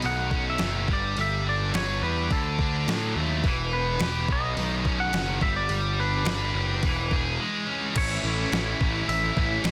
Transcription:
0.00 0.90 B2 medium
0.00 open hi-hat medium
0.04 0.58 B1 medium
0.04 0.60 D#3 medium
0.04 0.44 F#5 medium
0.31 0.89 C#4 medium
0.31 kick medium
0.50 0.88 E5 medium
0.58 0.87 F#1 medium
0.58 0.89 D#3 medium
0.58 snare loud
0.58 open hi-hat medium
0.88 1.15 G1 medium
0.88 1.17 G3 medium
0.88 kick loud
0.93 1.20 D5 medium
1.17 1.71 G1 medium
1.17 2.31 G3 medium
1.17 open hi-hat medium
1.21 1.48 E5 medium
1.47 2.31 D4 medium
1.47 1.75 D5 medium
1.74 2.01 G1 medium
1.74 2.31 B4 medium
1.74 2.01 C#5 medium
1.74 snare loud
1.74 open hi-hat medium
2.02 2.29 E2 medium
2.02 2.30 G4 medium
2.02 2.32 B4 medium
2.31 2.84 D2 medium
2.31 3.44 D3 medium
2.31 3.12 A4 medium
2.31 kick loud
2.31 open hi-hat medium
2.59 3.45 D4 medium
2.59 kick medium
2.87 3.14 A2 medium
2.87 3.45 F#3 medium
2.87 snare loud
2.87 open hi-hat medium
3.15 3.42 D#2 medium
3.15 3.45 A3 medium
3.44 3.97 E1 loud
3.44 4.30 E3 medium
3.44 kick loud
3.44 open hi-hat soft
3.73 4.89 B3 medium
3.73 3.99 B4 medium
3.99 4.27 E1 medium
3.99 4.30 G4 medium
3.99 4.31 B4 medium
3.99 snare loud
3.99 open hi-hat medium
4.28 4.55 B1 medium
4.28 5.43 B2 medium
4.28 kick loud
4.32 5.00 D#5 medium
4.57 5.11 B1 medium
4.57 5.14 D#3 medium
4.57 open hi-hat medium
4.85 5.42 C#4 medium
4.85 kick medium
5.00 5.42 F#5 loud
5.13 5.40 F#1 medium
5.13 5.43 D#3 medium
5.13 snare loud
5.13 open hi-hat medium
5.41 5.68 G1 medium
5.41 5.70 G3 medium
5.41 5.55 E5 medium
5.41 kick loud
5.56 6.00 D5 loud
5.69 6.23 G1 medium
5.69 6.84 G3 medium
5.69 open hi-hat medium
6.00 6.84 D4 medium
6.00 7.65 B4 medium
6.25 6.53 G1 medium
6.25 6.84 B4 medium
6.25 snare loud
6.25 open hi-hat medium
6.53 6.81 F#1 medium
6.53 6.83 G4 medium
6.83 7.37 E1 medium
6.83 7.95 E3 medium
6.83 kick loud
6.83 open hi-hat medium
7.11 7.97 G#4 medium
7.11 kick medium
7.39 7.96 G#3 medium
7.67 7.96 C#4 medium
7.95 8.17 A1 medium
7.95 8.51 A2 medium
7.95 8.24 E3 loud
7.95 8.26 A3 loud
7.95 9.71 C#4 medium
7.95 8.27 C#4 medium
7.95 9.71 E4 medium
7.95 8.27 E4 loud
7.95 9.71 A4 medium
7.95 9.08 C#5 medium
7.95 9.71 E5 medium
7.95 kick loud
7.95 open hi-hat medium
7.95 crash loud
8.23 8.45 A1 loud
8.23 8.51 E3 medium
8.23 8.52 A3 medium
8.27 8.52 C#4 medium
8.27 8.53 E4 medium
8.51 8.73 A1 medium
8.51 9.64 A2 medium
8.51 8.79 E3 medium
8.51 8.67 A3 medium
8.51 8.66 C#4 medium
8.51 8.65 E4 loud
8.51 snare loud
8.51 open hi-hat medium
8.65 8.80 A3 medium
8.65 8.81 C#4 medium
8.65 8.82 E4 medium
8.79 9.01 A1 medium
8.79 9.36 E3 medium
8.79 8.96 A3 medium
8.79 8.94 C#4 medium
8.79 8.93 E4 medium
8.79 kick medium
8.94 9.25 A3 medium
8.94 9.23 C#4 medium
8.94 9.22 E4 medium
9.08 9.29 A1 medium
9.08 9.71 E5 medium
9.08 open hi-hat medium
9.23 9.38 A3 medium
9.23 9.37 C#4 medium
9.23 9.39 E4 medium
9.36 9.58 A1 medium
9.36 9.64 E3 medium
9.36 9.66 A3 medium
9.36 9.65 C#4 medium
9.36 9.67 E4 medium
9.36 kick medium
9.64 9.71 A1 medium
9.64 9.71 A2 medium
9.64 9.71 E3 loud
9.64 9.71 A3 loud
9.64 9.71 C#4 loud
9.64 9.71 E4 loud
9.64 snare loud
9.64 open hi-hat medium

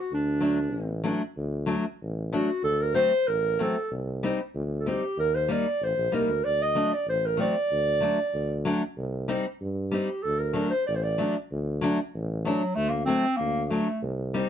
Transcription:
0.00 0.13 F#4 medium
0.12 0.76 D2 medium
0.12 1.04 D4 medium
0.41 0.58 F#3 medium
0.41 0.58 A3 soft
0.41 0.58 D4 medium
0.75 1.13 A1 medium
1.04 1.21 F#3 medium
1.04 1.21 A3 medium
1.04 1.21 D4 medium
1.37 1.75 D2 medium
1.66 1.84 F#3 medium
1.66 1.84 A3 medium
1.66 1.84 D4 medium
2.02 2.40 A1 medium
2.33 2.49 F#3 medium
2.33 2.49 A3 medium
2.33 2.49 D4 medium
2.33 2.63 F#4 medium
2.63 3.01 D2 medium
2.63 2.83 A4 loud
2.81 2.94 A#4 medium
2.94 3.11 F#3 medium
2.94 3.11 A3 soft
2.94 3.11 C4 medium
2.94 3.29 C5 loud
3.27 3.66 A1 medium
3.27 3.63 A#4 loud
3.59 3.75 F#3 medium
3.59 3.75 A3 medium
3.59 3.76 C4 medium
3.59 3.92 A4 medium
3.91 4.29 C2 medium
4.23 4.39 G3 medium
4.23 4.39 C4 medium
4.23 4.39 D#4 medium
4.54 4.92 D2 medium
4.80 4.89 A4 medium
4.86 5.02 G3 medium
4.86 5.02 C4 medium
4.86 5.03 D#4 medium
4.86 5.18 G4 medium
5.17 5.55 D#2 medium
5.17 5.37 A#4 loud
5.35 5.52 C5 medium
5.48 5.65 G3 medium
5.48 5.65 A#3 medium
5.48 5.66 D#4 medium
5.48 5.85 D5 medium
5.81 5.95 A1 medium
5.81 6.14 C5 medium
5.97 6.11 A#1 medium
6.12 6.27 C2 medium
6.12 6.28 G3 medium
6.12 6.28 A#3 medium
6.12 6.29 D#4 medium
6.12 6.46 A#4 medium
6.28 6.42 D2 medium
6.44 6.83 D2 medium
6.44 6.64 D5 loud
6.62 6.95 D#5 medium
6.75 6.91 F#3 medium
6.75 6.91 A3 medium
6.75 6.92 D4 medium
6.93 7.08 D5 medium
7.07 7.45 A1 medium
7.07 7.27 C5 medium
7.26 7.40 A#4 medium
7.37 7.54 F#3 medium
7.37 7.54 A3 soft
7.37 7.55 C4 medium
7.37 8.62 D5 loud
7.72 8.09 D2 medium
8.01 8.17 F#3 medium
8.01 8.18 A3 medium
8.01 8.18 D4 medium
8.34 8.72 D2 medium
8.65 8.81 F#3 medium
8.65 8.82 A3 medium
8.65 8.82 D4 medium
8.97 9.35 C2 medium
9.28 9.44 G3 medium
9.28 9.44 C4 medium
9.28 9.45 D#4 medium
9.61 9.99 G2 medium
9.91 10.08 G3 medium
9.91 10.09 C4 medium
9.91 10.09 D#4 medium
9.91 10.24 G4 medium
10.23 10.63 D2 medium
10.23 10.40 A4 medium
10.39 10.69 A#4 medium
10.53 10.70 F#3 medium
10.53 10.71 A3 soft
10.53 10.71 D4 medium
10.70 10.85 C5 medium
10.87 11.26 A1 medium
10.87 10.97 D5 medium
10.95 11.04 C5 medium
11.03 11.35 D5 medium
11.18 11.34 F#3 medium
11.18 11.34 A3 medium
11.18 11.35 D4 medium
11.51 11.89 D2 medium
11.81 11.98 F#3 medium
11.81 11.98 A3 medium
11.81 11.99 D4 medium
12.14 12.52 A1 medium
12.45 12.61 F#3 medium
12.45 12.77 F#3 medium
12.45 12.61 A3 medium
12.45 12.62 D4 medium
12.75 13.15 D2 medium
12.75 12.91 A3 loud
12.89 13.05 A#3 medium
13.05 13.24 F#3 medium
13.05 13.24 A3 medium
13.05 13.39 C4 loud
13.05 13.24 C4 medium
13.37 13.78 D2 medium
13.37 13.64 A#3 medium
13.64 13.71 A#3 medium
13.69 13.87 F#3 medium
13.69 14.02 A3 medium
13.69 13.87 A3 medium
13.69 13.88 D4 medium
14.02 14.41 C2 medium
14.34 14.49 G3 medium
14.34 14.49 C4 medium
14.34 14.49 D#4 medium

